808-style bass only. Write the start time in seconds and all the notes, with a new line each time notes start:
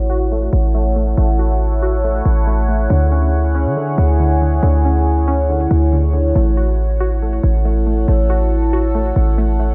Already playing: A1
0.53 A1
1.18 A1
2.25 A1
2.90 D2
3.66 D3
3.98 D2
4.63 D2
5.71 D2
6.36 A1
7.43 A1
8.08 A1
9.16 A1